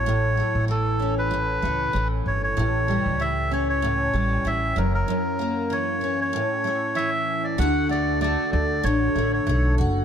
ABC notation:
X:1
M:4/4
L:1/16
Q:"Swing 16ths" 1/4=96
K:D
V:1 name="Melodica"
c4 A3 B6 z c c- | c4 e2 c c4- c e2 ^A A- | ^A4 c3 c4- c e3 d | f2 d2 d2 d2 c3 c3 z2 |]
V:2 name="Steel-string acoustic guitar" clef=bass
A,,2 A,2 E,2 C2 A,,2 A,2 E,4 | A,,2 G,2 E,2 C2 A,,2 G,2 E,2 F,,2 | F,,2 ^A,2 E,2 C2 =A,,2 =A,2 E,4 | [D,F]2 A,2 A,4 D,2 A,2 A,2 F2 |]
V:3 name="Upright bass" clef=bass
A,,,3 A,,,6- A,,, C,,2 A,,,2 G,,,2 | A,,,3 C,,6- C,, A,,,2 A,,,2 F,,,2 | z16 | D,,4- D,, z D,,2 A,,,2 A,,,2 B,,,2 F,,,2 |]